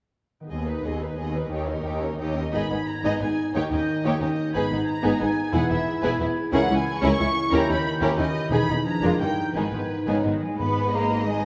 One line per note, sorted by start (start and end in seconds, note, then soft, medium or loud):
0.40 1.31 D#3 soft
0.40 1.51 B3 soft
0.40 2.86 D#4 soft
0.46 0.81 D#2 soft
0.46 1.50 G#4 soft
0.51 0.81 D#2 soft
0.51 0.67 B3 soft
0.51 0.67 G#4 soft
0.51 0.67 D#5 soft
0.68 0.85 D#4 soft
0.68 0.85 B4 soft
0.84 1.14 D#2 soft
0.84 1.15 D#2 soft
0.84 1.02 B3 soft
0.84 1.02 G#4 soft
0.84 1.02 D#5 soft
1.02 1.19 D#4 soft
1.02 1.19 B4 soft
1.18 1.47 D#2 soft
1.18 1.34 B3 soft
1.18 1.33 G#4 soft
1.18 1.33 D#5 soft
1.33 2.46 D#3 soft
1.33 1.50 D#4 soft
1.33 1.51 B4 soft
1.33 1.52 B4 soft
1.37 2.48 A#3 soft
1.42 2.50 C#4 soft
1.46 2.52 G4 soft
1.51 1.80 D#2 soft
1.51 1.81 D#2 soft
1.51 1.67 D#4 soft
1.51 1.67 G4 soft
1.51 1.67 C#5 soft
1.68 1.85 C#4 soft
1.68 1.85 D#4 soft
1.68 1.85 A#4 soft
1.84 2.15 D#2 soft
1.84 2.01 D#4 soft
1.84 2.02 G4 soft
1.84 2.01 C#5 soft
2.02 2.19 C#4 soft
2.02 2.19 D#4 soft
2.02 2.19 A#4 soft
2.02 2.09 C#5 soft
2.18 2.49 D#2 soft
2.18 2.50 D#2 soft
2.18 2.35 D#4 soft
2.18 2.36 G4 soft
2.18 2.35 C#5 soft
2.18 2.53 D#5 soft
2.36 2.53 C#4 soft
2.36 2.55 D#4 soft
2.36 2.53 A#4 soft
2.53 2.61 G#1 soft
2.53 3.56 G#2 soft
2.53 2.60 G#2 soft
2.53 2.68 B3 soft
2.53 2.69 D#4 soft
2.53 3.17 D#4 soft
2.53 2.70 G#4 soft
2.53 2.69 D#5 soft
2.53 2.86 B5 soft
2.53 3.17 G#6 soft
2.70 2.77 G#1 soft
2.70 2.77 G#2 soft
2.70 2.76 B3 soft
2.70 3.37 B3 soft
2.70 2.78 B3 soft
2.70 2.77 D#4 soft
2.70 2.78 G#4 soft
2.87 3.20 D#4 soft
2.87 3.21 A#5 medium
3.04 3.11 G#1 soft
3.04 3.12 G#2 soft
3.04 3.20 B3 soft
3.04 3.20 D#4 soft
3.04 3.56 G#4 soft
3.04 3.21 G#4 soft
3.04 3.21 D#5 soft
3.20 3.28 G#1 soft
3.20 3.28 G#2 soft
3.20 3.28 B3 soft
3.20 3.87 D#4 soft
3.20 3.28 D#4 soft
3.20 3.55 D#4 soft
3.20 3.29 G#4 soft
3.20 3.54 G#5 soft
3.20 3.54 G#6 soft
3.38 3.56 B3 soft
3.55 3.62 D#2 soft
3.55 4.56 D#3 soft
3.55 3.70 A#3 soft
3.55 3.70 D#4 soft
3.55 4.21 D#4 soft
3.55 3.70 G4 soft
3.55 3.71 C#5 soft
3.55 3.62 G5 medium
3.55 4.19 G6 soft
3.71 3.78 D#2 soft
3.71 3.79 D#2 soft
3.71 3.78 A#3 soft
3.71 4.38 C#4 soft
3.71 3.79 C#4 soft
3.71 3.78 D#4 soft
3.71 3.79 G4 soft
3.71 4.04 D#5 medium
3.88 4.20 D#4 soft
4.05 4.12 D#2 soft
4.05 4.20 A#3 soft
4.05 4.21 D#4 medium
4.05 4.56 G4 soft
4.05 4.20 G4 soft
4.05 4.22 C#5 soft
4.05 4.21 C#5 soft
4.20 4.29 D#2 soft
4.20 4.28 A#3 soft
4.20 4.28 C#4 soft
4.20 4.87 D#4 soft
4.20 4.28 D#4 soft
4.20 4.54 D#4 soft
4.20 4.28 G4 soft
4.20 4.55 D#5 soft
4.20 4.54 G6 soft
4.39 4.57 C#4 soft
4.55 4.63 G#1 soft
4.55 5.55 G#2 soft
4.55 4.63 G#2 soft
4.55 4.70 B3 soft
4.55 5.19 D#4 soft
4.55 4.70 D#4 soft
4.55 4.70 G#4 soft
4.55 4.70 B4 soft
4.55 4.88 B5 medium
4.55 5.19 G#6 soft
4.71 4.79 G#1 soft
4.71 4.79 G#2 soft
4.71 4.78 B3 soft
4.71 5.37 B3 soft
4.71 4.79 B3 soft
4.71 4.78 D#4 soft
4.71 4.79 D#4 soft
4.87 5.21 D#4 soft
4.87 5.20 A#5 medium
5.03 5.12 G#1 medium
5.03 5.11 G#2 soft
5.03 5.18 B3 medium
5.03 5.18 D#4 soft
5.03 5.19 G#4 soft
5.03 5.86 G#4 soft
5.03 5.20 B4 medium
5.19 5.28 G#1 soft
5.19 5.28 G#2 soft
5.19 5.26 B3 soft
5.19 5.27 B3 soft
5.19 5.26 D#4 soft
5.19 5.27 D#4 soft
5.19 5.56 D#4 soft
5.19 5.54 G#5 medium
5.19 5.53 G#6 soft
5.38 6.55 B3 soft
5.53 5.61 E1 medium
5.53 5.61 E2 medium
5.53 6.54 E3 soft
5.53 5.69 B3 soft
5.53 5.69 E4 soft
5.53 6.52 E4 soft
5.53 5.69 G#4 medium
5.53 5.69 B4 medium
5.53 5.70 F#5 medium
5.53 6.51 G#6 soft
5.70 5.77 E1 soft
5.70 5.77 E2 soft
5.70 5.77 B3 soft
5.70 5.77 E4 soft
5.70 6.35 E4 soft
5.70 6.03 E5 medium
5.87 6.19 G#4 soft
6.03 6.11 E1 medium
6.03 6.10 E2 medium
6.03 6.19 B3 medium
6.03 6.18 E4 medium
6.03 6.19 G#4 medium
6.03 6.19 B4 medium
6.03 6.55 B4 soft
6.20 6.28 E1 soft
6.20 6.27 E2 soft
6.20 6.27 B3 soft
6.20 6.26 E4 soft
6.20 6.27 E4 soft
6.20 7.01 G#4 soft
6.37 6.85 E4 soft
6.52 6.60 C#2 medium
6.52 7.53 C#3 medium
6.52 6.68 C#4 medium
6.52 6.68 E4 medium
6.52 7.50 E4 medium
6.52 6.68 G#4 medium
6.52 6.68 A#4 medium
6.52 6.73 F#5 medium
6.52 7.27 G#6 soft
6.70 6.77 C#2 soft
6.70 7.35 A#3 soft
6.70 6.76 C#4 soft
6.70 6.77 C#4 soft
6.70 6.76 E4 soft
6.70 6.77 E4 soft
6.76 6.98 G#5 medium
6.86 7.19 E4 soft
6.97 7.52 C#6 medium
7.02 7.09 C#2 medium
7.02 7.11 C#2 medium
7.02 7.18 C#4 medium
7.02 7.18 E4 medium
7.02 7.54 G#4 soft
7.02 7.18 G#4 medium
7.02 7.18 A#4 medium
7.19 7.26 C#2 soft
7.19 7.27 C#2 soft
7.19 7.26 C#4 soft
7.19 7.26 E4 soft
7.19 7.85 E4 soft
7.19 7.27 E4 soft
7.36 8.53 A#3 soft
7.52 7.59 D#2 medium
7.52 7.60 D#2 medium
7.52 8.53 D#3 medium
7.52 7.67 C#4 medium
7.52 8.17 E4 medium
7.52 7.67 E4 medium
7.52 7.68 G4 medium
7.52 7.68 A#4 medium
7.52 7.74 A#5 medium
7.52 8.17 G6 medium
7.69 7.76 D#2 soft
7.69 7.75 C#4 soft
7.69 8.34 C#4 soft
7.69 7.76 C#4 soft
7.69 7.75 D#4 soft
7.69 7.75 E4 soft
7.74 7.95 B5 medium
7.86 8.17 E4 soft
8.02 8.09 D#2 medium
8.02 8.17 C#4 medium
8.02 8.17 E4 medium
8.02 8.17 G4 medium
8.02 8.53 G4 soft
8.02 8.17 A#4 medium
8.02 8.17 C#5 medium
8.17 8.25 D#2 soft
8.17 8.25 C#4 soft
8.17 8.25 D#4 soft
8.17 8.53 E4 soft
8.17 8.25 E4 soft
8.17 8.87 E4 soft
8.17 8.51 D#5 medium
8.17 8.51 G6 soft
8.35 8.53 C#4 soft
8.51 8.58 E1 medium
8.51 8.59 E2 medium
8.51 8.87 E3 medium
8.51 8.67 B3 soft
8.51 8.67 D#4 soft
8.51 8.87 D#4 medium
8.51 8.68 G#4 medium
8.51 8.85 B5 medium
8.51 8.84 G#6 soft
8.68 8.76 E1 soft
8.68 8.76 E2 soft
8.68 8.75 B3 soft
8.68 8.75 D#4 soft
8.68 8.87 D#4 soft
8.68 8.77 D#4 soft
8.68 9.21 G#4 soft
8.85 9.21 F3 soft
8.85 9.20 D4 soft
8.85 9.19 A#5 medium
8.85 9.19 G#6 soft
9.02 9.09 F1 soft
9.02 9.10 F2 medium
9.02 9.18 G#3 medium
9.02 9.18 D4 soft
9.02 9.21 D4 soft
9.02 9.19 F4 soft
9.02 9.36 A#4 soft
9.02 9.19 A#4 soft
9.20 9.27 G1 soft
9.20 9.56 G2 soft
9.20 9.27 G2 soft
9.20 9.27 G3 soft
9.20 9.27 A#3 soft
9.20 9.27 C#4 soft
9.20 9.54 D#4 soft
9.20 9.27 D#4 soft
9.20 9.55 G5 medium
9.20 9.55 G6 soft
9.37 9.88 D#4 soft
9.54 9.62 G#1 soft
9.54 10.58 G#2 soft
9.54 9.62 G#2 soft
9.54 9.72 D#3 soft
9.54 9.72 B3 soft
9.54 10.40 D#4 soft
9.54 9.72 D#4 soft
9.54 9.72 G#4 soft
9.54 10.24 B4 soft
9.54 10.08 G#6 soft
9.72 9.79 G#1 soft
9.72 9.79 G#2 soft
9.72 9.80 D#3 soft
9.72 9.80 G#3 soft
9.72 10.41 B3 soft
9.72 9.80 B3 soft
9.89 10.23 D#4 soft
10.07 10.14 G#1 soft
10.07 10.15 G#2 soft
10.07 10.15 C#3 soft
10.07 10.24 D#3 soft
10.07 10.23 B3 soft
10.07 10.23 D#4 soft
10.07 10.24 G#4 soft
10.07 11.45 B4 soft
10.07 10.24 C#5 soft
10.24 10.32 G#1 soft
10.24 10.32 G#2 soft
10.24 10.32 D#3 soft
10.24 10.42 D#3 soft
10.24 10.32 G#3 soft
10.24 10.32 B3 soft
10.24 10.33 B3 soft
10.24 10.93 D#4 soft
10.24 10.42 D#5 soft
10.41 10.60 G#3 soft
10.41 10.75 B3 soft
10.41 10.59 G#5 soft
10.59 11.45 G#1 soft
10.59 11.45 G#2 soft
10.59 11.07 G#2 medium
10.59 10.94 B3 medium
10.59 11.45 D#4 soft
10.59 11.45 G#4 soft
10.59 10.91 B4 soft
10.59 11.45 B4 soft
10.59 10.93 B5 medium
10.76 11.44 B3 soft
10.93 11.28 A#3 soft
10.93 11.28 D#4 soft
10.93 11.45 D#5 medium
10.93 11.29 A#5 medium
11.12 11.45 G#4 soft
11.28 11.45 G#3 medium
11.28 11.45 D#4 soft
11.28 11.45 G#5 medium